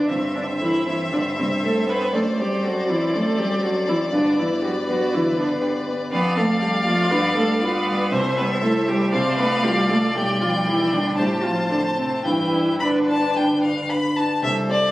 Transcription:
0.00 0.10 G2 soft
0.00 0.12 D3 soft
0.00 0.11 D4 medium
0.00 0.13 D4 soft
0.00 0.12 B4 soft
0.09 1.09 G2 soft
0.09 0.18 C3 soft
0.09 0.35 C4 medium
0.09 4.09 C5 soft
0.09 2.09 E5 soft
0.35 0.62 D3 soft
0.35 0.76 C4 soft
0.35 0.43 D4 medium
0.61 0.85 E3 soft
0.61 0.86 E4 medium
0.61 1.01 A4 soft
0.86 1.13 E3 medium
0.86 1.27 C4 soft
0.86 0.96 E4 medium
1.12 2.10 G2 soft
1.12 1.39 D3 medium
1.12 1.21 D4 medium
1.37 1.65 C3 soft
1.37 1.78 G3 soft
1.37 1.46 C4 medium
1.63 1.86 A3 medium
1.63 2.03 A4 soft
1.63 1.90 A4 medium
1.87 2.15 B3 medium
1.87 2.13 C4 soft
1.87 2.14 B4 medium
2.13 3.11 F#2 soft
2.13 2.41 A3 medium
2.13 2.23 A4 medium
2.13 6.08 D5 medium
2.39 2.65 G3 medium
2.39 2.79 C4 soft
2.39 2.65 G4 medium
2.63 2.91 F#3 medium
2.63 2.91 F#4 medium
2.63 3.04 A4 soft
2.88 3.16 E3 medium
2.88 3.28 C4 soft
2.88 3.16 E4 medium
3.13 4.10 F#2 soft
3.13 3.40 A3 medium
3.13 3.40 A4 medium
3.38 3.78 F#3 soft
3.38 3.63 G3 medium
3.38 3.63 G4 medium
3.64 3.90 F#3 medium
3.64 3.72 F#4 medium
3.64 4.03 A4 soft
3.88 4.13 E3 medium
3.88 4.13 C4 soft
3.88 3.97 E4 medium
4.12 5.10 G2 soft
4.12 4.38 D3 medium
4.12 4.41 D4 medium
4.12 6.09 B4 soft
4.38 4.46 E3 medium
4.38 4.78 B3 soft
4.38 4.63 E4 medium
4.62 4.70 F#3 medium
4.62 4.71 F#4 medium
4.62 5.03 G4 soft
4.87 4.96 F#3 medium
4.87 5.27 B3 soft
4.87 5.16 F#4 medium
5.12 5.52 D3 soft
5.12 5.40 E3 medium
5.12 5.38 E4 medium
5.37 5.63 D3 medium
5.37 5.77 B3 soft
5.37 5.46 D4 medium
5.62 6.02 G4 soft
5.87 6.12 B3 soft
6.12 7.08 F2 medium
6.12 6.39 B3 medium
6.12 6.38 B4 medium
6.12 8.08 D5 medium
6.12 8.08 F5 medium
6.37 6.76 A3 soft
6.37 6.63 A3 medium
6.37 6.63 A4 medium
6.61 6.85 G3 medium
6.61 6.86 G4 medium
6.61 7.01 A4 medium
6.86 7.10 F3 medium
6.86 7.11 A3 soft
6.86 7.12 F4 medium
7.10 8.09 G2 medium
7.10 7.38 B3 medium
7.10 7.35 B4 medium
7.36 7.76 G3 soft
7.36 7.63 A3 medium
7.36 7.60 A4 medium
7.61 8.13 B3 medium
7.61 8.02 F4 soft
7.61 8.14 B4 medium
7.87 8.12 G3 soft
8.11 9.10 C2 medium
8.11 8.39 C4 medium
8.11 9.09 C5 medium
8.11 8.37 C5 medium
8.11 9.09 E5 medium
8.37 8.78 G3 soft
8.37 8.61 B3 medium
8.37 8.45 B4 medium
8.62 8.70 A3 medium
8.62 9.03 E4 soft
8.62 8.89 A4 medium
8.88 9.12 G3 medium
8.88 9.13 G3 medium
8.88 9.14 G4 medium
9.12 10.13 C2 medium
9.12 9.40 C4 medium
9.12 9.37 C5 medium
9.12 11.14 D5 medium
9.12 10.12 F5 medium
9.38 9.80 A3 medium
9.38 9.65 B3 medium
9.38 9.65 B4 loud
9.63 9.90 G3 medium
9.63 10.05 F4 medium
9.63 9.91 G4 medium
9.89 10.15 A3 medium
9.89 10.18 A4 medium
10.14 11.14 B1 medium
10.14 10.42 G3 medium
10.14 10.40 G4 medium
10.14 11.14 G5 medium
10.40 10.69 F3 medium
10.40 10.82 G3 soft
10.40 10.49 F4 medium
10.67 10.94 E3 medium
10.67 10.95 E4 medium
10.67 11.08 G4 medium
10.92 11.18 D3 medium
10.92 11.18 G3 soft
10.92 11.20 D4 medium
11.18 12.22 A2 medium
11.18 11.26 G3 medium
11.18 11.45 G4 medium
11.18 12.21 C5 medium
11.18 12.21 A5 medium
11.43 11.70 F3 medium
11.43 11.86 C4 soft
11.43 11.70 F4 medium
11.70 11.79 D3 medium
11.70 11.78 D4 medium
11.70 12.14 A4 soft
11.97 12.25 C3 soft
11.97 12.24 C4 medium
11.97 12.25 C4 soft
12.25 13.33 G2 soft
12.25 12.81 E3 medium
12.25 12.83 E4 medium
12.25 14.18 B4 soft
12.25 12.72 G5 soft
12.53 12.97 D4 soft
12.80 13.88 D3 soft
12.80 13.90 D4 medium
12.80 13.25 B4 soft
12.80 12.88 B5 medium
13.09 13.52 D4 soft
13.09 13.38 A5 soft
13.36 13.79 D3 soft
13.36 13.63 G5 medium
13.63 14.06 D4 soft
13.63 13.91 F5 soft
13.89 14.32 B4 soft
13.89 14.18 B5 soft
14.16 14.43 D4 soft
14.16 14.43 A5 soft
14.42 14.68 C2 soft
14.42 14.92 G3 soft
14.42 14.92 A4 medium
14.42 14.91 C5 soft
14.42 14.51 E5 medium
14.69 14.92 C4 soft
14.69 14.92 G4 soft
14.69 14.92 C5 soft
14.69 14.92 D5 medium

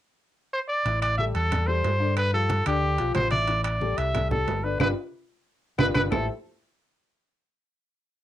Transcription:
0.53 0.60 C5 loud
0.68 0.99 D5 loud
0.85 1.31 A1 medium
0.85 1.12 E3 medium
0.85 1.12 E4 medium
0.85 1.13 E5 medium
0.85 high conga soft
0.85 high timbale medium
1.02 1.17 D5 loud
1.02 high conga soft
1.02 high timbale medium
1.02 claves medium
1.17 1.45 G3 medium
1.17 1.45 G4 medium
1.17 1.46 A4 medium
1.17 1.25 E5 medium
1.17 high conga medium
1.17 low timbale medium
1.35 1.81 E2 medium
1.35 1.69 A4 loud
1.35 high conga soft
1.35 high timbale medium
1.51 1.65 G3 medium
1.51 1.65 G4 medium
1.51 1.65 A4 medium
1.51 high conga soft
1.51 low conga medium
1.51 high timbale medium
1.51 claves medium
1.67 1.95 G3 medium
1.67 1.95 G4 medium
1.67 1.95 A4 medium
1.67 2.16 C5 medium
1.67 high conga soft
1.84 2.61 G2 medium
1.84 high conga soft
1.84 high timbale medium
1.84 low timbale medium
2.00 2.27 D3 medium
2.00 2.27 D4 medium
2.00 2.27 D5 medium
2.17 2.32 B4 loud
2.17 high conga soft
2.17 high timbale medium
2.17 claves medium
2.33 2.60 F3 medium
2.33 2.60 F4 medium
2.33 2.61 G4 medium
2.33 2.64 A4 medium
2.33 high conga soft
2.50 high conga medium
2.50 high timbale medium
2.50 low timbale medium
2.66 2.97 D2 medium
2.66 2.93 D3 medium
2.66 2.94 D4 medium
2.66 3.12 G4 loud
2.66 2.93 D5 medium
2.66 high conga soft
2.66 high timbale loud
2.66 claves medium
2.83 high conga soft
2.98 3.14 B1 medium
2.98 3.26 F3 medium
2.98 3.26 F4 medium
2.98 3.26 G4 medium
2.98 high conga soft
2.98 high timbale medium
3.15 3.92 A1 medium
3.15 3.31 C5 loud
3.15 high conga medium
3.15 high timbale medium
3.15 low timbale medium
3.15 claves medium
3.31 3.45 E3 medium
3.31 3.45 E4 medium
3.31 3.62 D5 loud
3.31 3.46 E5 medium
3.31 high conga medium
3.31 high timbale medium
3.48 3.75 E3 medium
3.48 3.75 E4 medium
3.48 3.76 E5 medium
3.48 high conga soft
3.48 high timbale medium
3.64 3.99 D5 medium
3.64 high conga soft
3.64 high timbale loud
3.64 claves medium
3.81 4.09 G3 medium
3.81 4.09 G4 medium
3.81 4.09 A4 medium
3.81 high conga medium
3.81 low timbale medium
3.97 4.44 C2 medium
3.97 4.30 E5 loud
3.97 high conga soft
3.97 high timbale medium
4.14 4.28 G3 medium
4.14 4.28 G4 medium
4.14 4.28 A4 medium
4.14 high conga soft
4.14 low conga medium
4.14 high timbale medium
4.14 claves medium
4.30 4.58 G3 medium
4.30 4.58 G4 medium
4.30 4.65 A4 medium
4.30 4.58 A4 medium
4.30 high conga soft
4.30 low conga medium
4.47 4.78 G1 medium
4.47 high conga soft
4.47 high timbale medium
4.47 low timbale medium
4.63 4.77 D3 medium
4.63 4.77 D4 medium
4.63 4.80 B4 medium
4.63 4.77 D5 medium
4.79 4.92 G1 loud
4.79 4.90 D4 medium
4.79 4.90 F4 medium
4.79 4.90 G4 medium
4.79 4.88 B4 loud
4.79 high conga medium
4.79 high timbale loud
4.79 claves loud
5.78 5.91 G1 loud
5.78 5.89 D4 loud
5.78 5.89 F4 loud
5.78 5.89 G4 loud
5.78 5.87 B4 loud
5.78 high conga loud
5.78 high timbale loud
5.78 claves medium
5.94 6.08 G1 loud
5.94 6.06 D4 medium
5.94 6.05 G4 medium
5.94 6.03 B4 medium
5.94 high conga loud
5.94 high timbale medium
5.94 claves loud
6.11 6.27 A1 medium
6.11 6.27 A3 medium
6.11 6.27 E4 medium
6.11 6.27 G4 medium
6.11 6.27 A4 medium
6.11 6.27 C5 medium
6.11 6.27 E5 loud
6.11 low conga medium
6.11 low timbale loud
6.11 claves loud

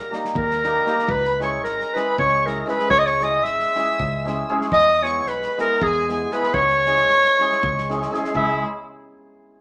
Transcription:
0.00 0.13 A#4 medium
0.00 0.13 A#5 medium
0.11 0.62 G3 medium
0.11 0.27 A#3 medium
0.11 0.28 D#4 medium
0.11 0.28 G4 medium
0.11 snare soft
0.25 snare soft
0.35 0.79 D#2 loud
0.35 1.12 A#4 loud
0.35 kick medium
0.40 1.13 A#5 medium
0.51 snare soft
0.63 0.84 G3 medium
0.63 0.78 A#3 medium
0.63 0.78 D#4 medium
0.63 0.79 G4 medium
0.63 snare soft
0.85 1.14 G3 medium
0.85 1.01 A#3 medium
0.85 1.01 D#4 medium
0.85 1.01 G4 loud
0.85 snare soft
0.99 snare soft
1.08 1.63 C#2 loud
1.08 1.41 B4 loud
1.08 1.41 B5 medium
1.08 kick medium
1.24 snare soft
1.39 1.94 G#3 medium
1.39 1.55 C#4 medium
1.39 1.55 E4 medium
1.39 1.55 G#4 medium
1.39 1.63 C#5 medium
1.39 1.63 C#6 medium
1.39 snare soft
1.63 1.82 G#1 loud
1.63 1.96 A#4 medium
1.63 2.00 A#5 medium
1.63 snare soft
1.80 snare soft
1.94 2.43 G#3 medium
1.94 2.10 C#4 medium
1.94 2.10 E4 medium
1.94 2.10 G#4 medium
1.94 2.18 B4 medium
1.94 snare soft
1.98 2.20 B5 medium
2.18 2.62 C#2 loud
2.18 2.48 C#5 loud
2.18 2.50 C#6 medium
2.18 kick medium
2.45 2.65 G#3 medium
2.45 2.59 C#4 medium
2.45 2.60 E4 medium
2.45 2.60 G#4 medium
2.45 2.68 A#4 medium
2.45 snare soft
2.49 2.69 A#5 medium
2.66 3.19 G#3 medium
2.66 2.81 C#4 medium
2.66 2.82 E4 medium
2.66 2.82 G#4 medium
2.66 2.90 B4 medium
2.66 2.90 B5 medium
2.66 snare soft
2.79 snare soft
2.90 3.45 C#2 loud
2.90 3.00 C#5 loud
2.90 3.01 C#6 medium
2.90 kick medium
2.99 3.08 D#5 loud
2.99 3.09 D#6 medium
3.06 3.24 C#5 loud
3.06 3.26 C#6 medium
3.06 snare soft
3.20 3.75 G#3 medium
3.20 3.36 C#4 medium
3.20 3.36 E4 medium
3.20 3.36 G#4 medium
3.20 3.45 D#5 loud
3.20 snare soft
3.24 3.48 D#6 medium
3.44 3.64 G#1 medium
3.44 4.49 E5 loud
3.44 4.50 E6 medium
3.44 snare soft
3.60 snare soft
3.76 4.24 G#3 medium
3.76 3.91 C#4 medium
3.76 3.91 E4 medium
3.76 3.91 G#4 medium
3.76 snare soft
4.00 4.43 C#2 loud
4.00 kick medium
4.25 4.48 G#3 medium
4.25 4.40 C#4 medium
4.25 4.41 E4 medium
4.25 4.41 G#4 medium
4.25 snare soft
4.49 4.77 G#3 loud
4.49 4.64 C#4 medium
4.49 4.64 E4 medium
4.49 4.64 G#4 loud
4.61 snare soft
4.72 5.26 E2 loud
4.72 5.04 D#5 loud
4.72 5.08 D#6 loud
4.72 kick medium
4.87 snare soft
5.01 5.56 G#3 medium
5.01 5.17 B3 medium
5.01 5.17 E4 medium
5.01 5.18 G#4 medium
5.01 5.20 C#5 medium
5.01 snare soft
5.06 5.22 C#6 medium
5.20 5.29 C#5 medium
5.20 5.32 C#6 medium
5.26 5.45 B1 loud
5.26 5.58 B4 medium
5.26 snare soft
5.31 5.60 B5 medium
5.42 snare soft
5.57 6.07 G#3 medium
5.57 5.72 B3 medium
5.57 5.72 E4 medium
5.57 5.73 G#4 medium
5.57 5.84 A#4 loud
5.57 snare soft
5.62 5.88 A#5 medium
5.81 6.25 E2 loud
5.81 6.09 G#4 loud
5.81 kick medium
5.87 6.11 G#5 medium
6.08 6.31 G#3 medium
6.08 6.23 B3 medium
6.08 6.23 E4 medium
6.08 6.23 G#4 medium
6.08 6.34 G#4 medium
6.08 snare soft
6.13 6.36 G#5 medium
6.32 6.58 G#3 medium
6.32 6.45 B3 medium
6.32 6.46 E4 medium
6.32 6.46 G#4 medium
6.32 6.56 B4 loud
6.32 6.58 B5 medium
6.32 snare soft
6.43 snare soft
6.54 7.08 C#2 loud
6.54 8.13 C#5 loud
6.54 8.14 C#6 loud
6.54 kick medium
6.69 snare soft
6.86 7.38 G#3 medium
6.86 7.00 C#4 medium
6.86 7.00 E4 medium
6.86 7.01 G#4 medium
6.86 snare soft
6.96 snare soft
7.08 7.27 G#1 loud
7.08 snare soft
7.25 snare soft
7.39 7.88 G#3 medium
7.39 7.54 C#4 medium
7.39 7.55 E4 medium
7.39 7.55 G#4 medium
7.39 snare soft
7.52 snare soft
7.63 8.06 C#2 loud
7.63 kick loud
7.78 snare soft
7.89 8.10 G#3 medium
7.89 8.04 C#4 medium
7.89 8.04 E4 medium
7.89 8.04 G#4 medium
7.89 snare soft
8.02 snare soft
8.11 8.33 G#3 loud
8.11 8.26 C#4 medium
8.11 8.26 E4 medium
8.11 8.27 G#4 loud
8.11 snare soft
8.25 snare soft
8.34 8.64 C#2 medium
8.34 8.63 G#3 medium
8.34 8.63 C#4 medium
8.34 8.63 E4 medium
8.34 8.64 E4 medium
8.34 8.63 G#4 medium
8.34 8.64 E5 loud
8.34 kick medium

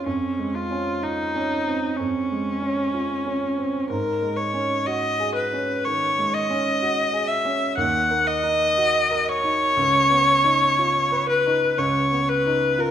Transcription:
0.06 1.95 F2 medium
0.06 0.57 C#4 medium
0.39 0.90 G#3 soft
0.55 1.04 F4 medium
0.71 1.22 C#4 soft
1.03 1.98 D#4 medium
1.03 1.54 F4 soft
1.35 1.87 C#4 soft
1.67 2.19 C4 soft
1.97 3.87 F2 soft
1.97 3.89 C#4 medium
2.32 2.82 G#3 soft
2.62 3.14 C#4 soft
2.94 3.45 F4 soft
3.27 3.77 C#4 soft
3.58 3.90 C4 soft
3.90 5.82 G#2 medium
3.90 4.38 A#4 medium
4.22 4.75 G#3 soft
4.36 4.88 C#5 medium
4.54 5.07 C#4 soft
4.86 5.40 F#4 soft
4.86 5.34 D#5 medium
5.20 5.73 G#4 medium
5.35 5.86 B4 medium
5.53 6.05 C#4 soft
5.85 6.38 D#3 soft
5.85 6.35 C#5 medium
6.19 6.69 G#3 soft
6.34 7.29 D#5 medium
6.50 7.00 C#4 medium
6.82 7.32 F#4 soft
7.13 7.64 G#4 soft
7.28 7.77 E5 medium
7.45 7.77 C#4 soft
7.77 9.73 D#2 medium
7.77 8.29 F#5 medium
8.11 8.65 A#3 soft
8.27 9.31 D#5 medium
8.43 8.98 D#4 medium
8.78 9.31 F#4 soft
9.11 9.64 A#4 medium
9.29 11.28 C#5 loud
9.44 9.77 D#4 soft
9.77 11.74 C#2 medium
10.10 10.64 B3 soft
10.44 10.98 D#4 medium
10.79 11.32 F4 medium
11.12 11.65 B4 medium
11.29 11.80 B4 medium
11.46 11.79 D#4 soft
11.78 12.91 C#2 medium
11.78 12.30 C#5 medium
12.11 12.66 B3 soft
12.29 12.82 B4 medium
12.46 12.91 D#4 soft
12.78 12.91 F4 medium
12.78 12.91 A#4 medium

